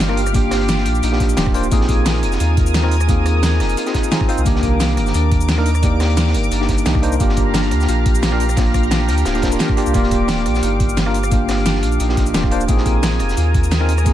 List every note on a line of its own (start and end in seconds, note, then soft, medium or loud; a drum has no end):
0.00 0.87 G1 loud
0.00 0.34 A#3 loud
0.00 0.75 D#4 medium
0.00 1.37 F4 medium
0.00 1.69 G4 medium
0.00 1.69 F5 medium
0.00 1.69 D6 medium
0.00 snare loud
0.00 closed hi-hat loud
0.00 closed hi-hat medium
0.00 shaker soft
0.09 0.20 A#3 loud
0.09 0.20 D4 medium
0.09 0.21 F4 medium
0.09 0.21 A#4 loud
0.09 cross-stick medium
0.17 closed hi-hat medium
0.17 open hi-hat medium
0.27 cross-stick soft
0.27 shaker medium
0.33 1.09 A#3 medium
0.33 1.71 A#3 medium
0.33 1.10 D4 medium
0.33 1.10 F4 medium
0.33 1.10 G4 loud
0.33 kick loud
0.33 closed hi-hat medium
0.33 shaker soft
0.51 cross-stick medium
0.51 snare loud
0.51 closed hi-hat medium
0.51 shaker soft
0.61 closed hi-hat soft
0.69 1.09 D4 medium
0.69 snare loud
0.69 closed hi-hat medium
0.69 closed hi-hat loud
0.69 shaker soft
0.78 snare soft
0.85 1.01 A#1 loud
0.85 closed hi-hat medium
0.95 shaker soft
1.03 1.36 A#1 medium
1.03 2.05 D#4 medium
1.03 closed hi-hat medium
1.03 shaker soft
1.12 1.35 A#3 medium
1.12 1.35 D4 medium
1.12 1.35 F4 medium
1.12 1.36 G4 medium
1.12 snare soft
1.20 kick medium
1.20 snare soft
1.20 closed hi-hat medium
1.29 shaker medium
1.37 1.70 D#1 medium
1.37 1.52 A#3 medium
1.37 1.52 D4 medium
1.37 2.40 F4 medium
1.37 1.53 F4 medium
1.37 1.53 G4 loud
1.37 snare loud
1.37 closed hi-hat medium
1.37 shaker soft
1.46 kick loud
1.46 cross-stick medium
1.54 1.66 A#3 loud
1.54 1.66 D4 medium
1.54 1.66 F4 medium
1.54 1.67 C5 loud
1.54 closed hi-hat medium
1.54 open hi-hat medium
1.64 shaker medium
1.71 2.25 A#1 loud
1.71 3.08 A#3 loud
1.71 2.81 C4 loud
1.71 2.81 D#4 medium
1.71 2.82 F4 medium
1.71 2.82 G#4 loud
1.71 7.16 A#4 medium
1.71 4.43 G#5 medium
1.71 4.43 D#6 medium
1.71 kick loud
1.71 closed hi-hat medium
1.71 shaker soft
1.81 snare medium
1.89 kick medium
1.89 closed hi-hat medium
1.89 shaker soft
2.06 3.43 D#4 medium
2.06 snare loud
2.06 closed hi-hat medium
2.06 shaker soft
2.15 closed hi-hat soft
2.23 2.39 F1 loud
2.23 closed hi-hat medium
2.32 snare soft
2.32 shaker soft
2.40 3.62 D#2 loud
2.40 3.77 F4 medium
2.40 closed hi-hat medium
2.40 shaker soft
2.57 kick loud
2.57 closed hi-hat medium
2.66 shaker medium
2.74 5.02 G#4 medium
2.74 snare loud
2.74 closed hi-hat medium
2.74 closed hi-hat loud
2.74 shaker soft
2.83 2.94 C4 loud
2.83 2.95 D#4 medium
2.83 2.95 F4 medium
2.83 2.95 A#4 loud
2.83 cross-stick medium
2.91 closed hi-hat medium
2.91 open hi-hat medium
3.01 cross-stick soft
3.01 shaker medium
3.08 4.46 A#3 medium
3.08 3.84 C4 medium
3.08 3.84 D#4 medium
3.08 3.84 F4 medium
3.08 3.85 G#4 loud
3.08 kick loud
3.08 closed hi-hat medium
3.08 shaker soft
3.26 cross-stick medium
3.26 closed hi-hat medium
3.26 shaker soft
3.43 3.94 D#4 medium
3.43 snare loud
3.43 closed hi-hat medium
3.43 shaker soft
3.60 3.76 F1 loud
3.60 cross-stick soft
3.60 snare soft
3.60 closed hi-hat medium
3.69 closed hi-hat soft
3.69 shaker soft
3.77 6.30 F4 medium
3.77 closed hi-hat medium
3.77 shaker soft
3.86 4.09 C4 medium
3.86 4.10 D#4 medium
3.86 4.10 F4 medium
3.86 4.10 G#4 medium
3.86 snare soft
3.86 closed hi-hat soft
3.94 4.11 D#4 medium
3.94 kick medium
3.94 snare soft
3.94 closed hi-hat medium
4.04 shaker medium
4.11 4.27 C4 medium
4.11 4.27 D#4 medium
4.11 5.20 D#4 loud
4.11 4.27 F4 medium
4.11 4.27 G#4 loud
4.11 snare loud
4.11 closed hi-hat medium
4.11 shaker soft
4.21 kick loud
4.21 cross-stick soft
4.28 4.40 C4 loud
4.28 4.41 D#4 medium
4.28 4.41 F4 medium
4.28 4.41 C5 loud
4.28 5.95 F5 medium
4.28 closed hi-hat medium
4.28 open hi-hat medium
4.38 4.45 C2 loud
4.38 shaker medium
4.45 4.99 C2 loud
4.45 5.56 D#3 medium
4.45 5.55 A#3 loud
4.45 5.83 A#3 loud
4.45 5.55 D4 medium
4.45 5.56 G4 loud
4.45 7.17 D6 medium
4.45 kick loud
4.45 closed hi-hat medium
4.45 shaker soft
4.55 snare medium
4.63 kick medium
4.63 closed hi-hat medium
4.63 shaker soft
4.80 6.17 C4 medium
4.80 snare loud
4.80 closed hi-hat medium
4.80 shaker medium
4.89 closed hi-hat soft
4.97 5.13 G1 loud
4.97 cross-stick soft
4.97 closed hi-hat medium
5.06 snare soft
5.06 shaker soft
5.14 6.36 D#2 loud
5.14 5.55 D4 medium
5.14 closed hi-hat medium
5.14 closed hi-hat loud
5.14 shaker medium
5.32 kick loud
5.32 closed hi-hat medium
5.41 shaker medium
5.49 6.58 D#4 medium
5.49 snare loud
5.49 closed hi-hat medium
5.49 shaker medium
5.57 5.69 A#3 loud
5.57 5.69 D4 medium
5.57 5.69 D#4 medium
5.57 5.69 A#4 loud
5.57 cross-stick soft
5.66 closed hi-hat medium
5.66 open hi-hat medium
5.75 cross-stick soft
5.75 shaker medium
5.82 6.58 A#3 medium
5.82 7.20 A#3 medium
5.82 6.59 D#4 medium
5.82 6.59 G4 loud
5.82 6.58 D5 medium
5.82 kick loud
5.82 closed hi-hat medium
5.82 shaker medium
6.00 cross-stick medium
6.00 snare loud
6.00 closed hi-hat medium
6.00 shaker soft
6.10 closed hi-hat soft
6.17 9.17 C4 medium
6.17 snare loud
6.17 closed hi-hat medium
6.17 shaker medium
6.27 snare soft
6.34 6.50 G1 loud
6.34 closed hi-hat medium
6.44 shaker soft
6.51 6.85 G1 medium
6.51 6.92 D4 medium
6.51 closed hi-hat medium
6.51 shaker soft
6.60 6.84 A#3 medium
6.60 6.84 D4 medium
6.60 6.84 D#4 medium
6.60 6.84 G4 medium
6.60 snare soft
6.69 kick medium
6.69 snare soft
6.69 closed hi-hat medium
6.78 shaker medium
6.85 7.19 C2 medium
6.85 7.01 A#3 medium
6.85 7.01 D4 medium
6.85 7.60 D#4 medium
6.85 7.01 D#4 medium
6.85 7.01 G4 medium
6.85 snare loud
6.85 closed hi-hat medium
6.85 closed hi-hat loud
6.85 shaker medium
6.95 kick loud
6.95 cross-stick soft
7.02 7.15 A#3 loud
7.02 7.15 D4 medium
7.02 7.15 D#4 medium
7.02 7.15 C5 loud
7.02 closed hi-hat medium
7.02 open hi-hat medium
7.12 shaker medium
7.19 7.73 G1 loud
7.19 8.29 A#3 loud
7.19 8.57 A#3 loud
7.19 8.30 D4 medium
7.19 8.30 F4 medium
7.19 12.65 G4 medium
7.19 8.30 G4 loud
7.19 12.65 F5 medium
7.19 9.92 A#5 medium
7.19 kick loud
7.19 closed hi-hat medium
7.19 shaker medium
7.29 snare medium
7.36 kick medium
7.36 closed hi-hat medium
7.36 shaker soft
7.54 8.91 D4 medium
7.54 snare loud
7.54 closed hi-hat loud
7.54 closed hi-hat medium
7.54 shaker medium
7.63 closed hi-hat soft
7.71 7.87 D2 loud
7.71 cross-stick soft
7.71 closed hi-hat medium
7.81 snare soft
7.81 shaker soft
7.89 9.10 A#1 loud
7.89 9.25 F4 medium
7.89 closed hi-hat medium
7.89 shaker medium
8.06 kick loud
8.06 closed hi-hat medium
8.15 shaker medium
8.23 9.60 G4 medium
8.23 snare loud
8.23 closed hi-hat medium
8.23 shaker medium
8.32 8.43 A#3 loud
8.32 8.43 D4 medium
8.32 8.43 F4 medium
8.32 8.44 A#4 loud
8.32 cross-stick soft
8.40 closed hi-hat medium
8.40 open hi-hat medium
8.49 cross-stick soft
8.49 shaker medium
8.56 9.32 A#3 medium
8.56 9.94 A#3 medium
8.56 9.33 D4 medium
8.56 9.33 F4 medium
8.56 9.33 G4 loud
8.56 kick loud
8.56 snare loud
8.56 closed hi-hat medium
8.56 shaker medium
8.66 closed hi-hat soft
8.74 kick medium
8.74 cross-stick medium
8.74 closed hi-hat medium
8.74 shaker soft
8.83 closed hi-hat soft
8.91 10.28 D4 medium
8.91 snare loud
8.91 closed hi-hat medium
8.91 shaker soft
9.08 9.24 D2 loud
9.08 cross-stick soft
9.08 snare soft
9.08 closed hi-hat medium
9.08 shaker soft
9.17 closed hi-hat soft
9.17 shaker soft
9.25 9.59 D1 medium
9.25 10.97 F4 medium
9.25 snare loud
9.25 closed hi-hat medium
9.25 closed hi-hat loud
9.25 shaker soft
9.34 9.41 A#3 medium
9.34 9.41 D4 medium
9.34 9.42 F4 medium
9.34 9.42 G4 medium
9.34 snare soft
9.34 closed hi-hat soft
9.42 9.50 A#3 medium
9.42 9.50 D4 medium
9.42 9.50 F4 medium
9.42 9.50 C5 loud
9.42 kick medium
9.42 snare loud
9.42 closed hi-hat medium
9.52 9.75 A#3 medium
9.52 9.75 D4 medium
9.52 9.75 F4 medium
9.52 9.76 A#4 medium
9.52 closed hi-hat soft
9.52 shaker medium
9.59 11.95 G4 medium
9.59 snare loud
9.59 closed hi-hat medium
9.59 closed hi-hat loud
9.59 shaker medium
9.69 kick loud
9.69 cross-stick soft
9.77 9.92 A#3 loud
9.77 9.92 D4 medium
9.77 9.93 F4 medium
9.77 9.93 G4 loud
9.77 closed hi-hat medium
9.77 open hi-hat medium
9.86 9.94 C2 loud
9.86 shaker medium
9.93 10.47 D#1 loud
9.93 11.04 A#3 medium
9.93 11.31 A#3 loud
9.93 11.04 F4 medium
9.93 11.05 G4 loud
9.93 11.04 D5 medium
9.93 12.66 D6 medium
9.93 kick loud
9.93 closed hi-hat loud
9.93 closed hi-hat medium
9.93 shaker soft
10.03 snare soft
10.11 kick medium
10.11 closed hi-hat medium
10.11 shaker soft
10.28 10.69 D4 medium
10.28 snare loud
10.28 closed hi-hat loud
10.28 closed hi-hat medium
10.28 shaker soft
10.38 closed hi-hat soft
10.46 10.61 A#1 loud
10.46 cross-stick soft
10.46 closed hi-hat medium
10.55 snare soft
10.55 shaker soft
10.63 11.84 G1 loud
10.63 11.72 D#4 medium
10.63 closed hi-hat loud
10.63 closed hi-hat medium
10.63 shaker soft
10.80 kick loud
10.80 closed hi-hat medium
10.89 shaker medium
10.97 12.34 F4 medium
10.97 snare loud
10.97 closed hi-hat medium
10.97 closed hi-hat loud
10.97 shaker medium
11.06 11.17 A#3 loud
11.06 11.18 D4 medium
11.06 11.18 F4 medium
11.06 11.18 A#4 loud
11.06 cross-stick medium
11.14 closed hi-hat medium
11.14 open hi-hat medium
11.24 cross-stick medium
11.24 shaker medium
11.30 12.06 A#3 medium
11.30 12.68 A#3 medium
11.30 12.07 D4 medium
11.30 12.07 F4 medium
11.30 12.08 G4 loud
11.30 kick loud
11.30 closed hi-hat loud
11.30 closed hi-hat medium
11.30 shaker soft
11.49 cross-stick medium
11.49 snare loud
11.49 closed hi-hat medium
11.49 shaker soft
11.58 closed hi-hat soft
11.66 12.06 D4 medium
11.66 snare loud
11.66 closed hi-hat medium
11.66 shaker soft
11.75 snare soft
11.83 11.99 A#1 loud
11.83 closed hi-hat medium
11.92 shaker soft
12.00 12.33 A#1 medium
12.00 13.03 D#4 medium
12.00 closed hi-hat loud
12.00 closed hi-hat medium
12.00 shaker soft
12.09 12.32 A#3 medium
12.09 12.32 D4 medium
12.09 12.33 F4 medium
12.09 12.33 G4 medium
12.09 snare soft
12.17 kick medium
12.17 snare soft
12.17 closed hi-hat medium
12.26 shaker medium
12.34 12.67 D#1 medium
12.34 12.49 A#3 medium
12.34 12.50 D4 medium
12.34 13.37 F4 medium
12.34 12.50 F4 medium
12.34 12.50 G4 medium
12.34 snare loud
12.34 closed hi-hat loud
12.34 closed hi-hat medium
12.34 shaker soft
12.43 kick loud
12.43 cross-stick medium
12.51 12.63 A#3 loud
12.51 12.63 D4 medium
12.51 12.64 F4 medium
12.51 12.64 C5 loud
12.51 closed hi-hat medium
12.51 open hi-hat medium
12.61 shaker medium
12.67 13.22 A#1 loud
12.67 14.05 A#3 loud
12.67 13.78 C4 loud
12.67 13.78 D#4 medium
12.67 13.79 F4 medium
12.67 13.79 G#4 loud
12.67 14.13 A#4 medium
12.67 14.13 G#5 medium
12.67 14.13 D#6 medium
12.67 kick loud
12.67 closed hi-hat medium
12.67 shaker soft
12.77 snare medium
12.86 kick medium
12.86 closed hi-hat medium
12.86 shaker soft
13.03 14.13 D#4 medium
13.03 snare loud
13.03 closed hi-hat medium
13.03 shaker soft
13.11 closed hi-hat soft
13.19 13.36 F1 loud
13.19 cross-stick soft
13.19 closed hi-hat medium
13.29 snare soft
13.29 shaker soft
13.37 14.13 D#2 loud
13.37 14.13 F4 medium
13.37 closed hi-hat medium
13.37 shaker soft
13.54 kick loud
13.54 closed hi-hat medium
13.64 shaker medium
13.71 14.13 G#4 medium
13.71 snare loud
13.71 closed hi-hat medium
13.71 shaker soft
13.80 13.92 C4 loud
13.80 13.92 D#4 medium
13.80 13.92 F4 medium
13.80 13.92 A#4 loud
13.80 cross-stick soft
13.89 closed hi-hat medium
13.89 open hi-hat medium
13.98 cross-stick soft
13.98 shaker medium
14.05 14.13 A#3 medium
14.05 14.13 C4 medium
14.05 14.13 D#4 medium
14.05 14.13 F4 medium
14.05 14.13 G#4 loud
14.05 kick loud
14.05 closed hi-hat medium
14.05 shaker soft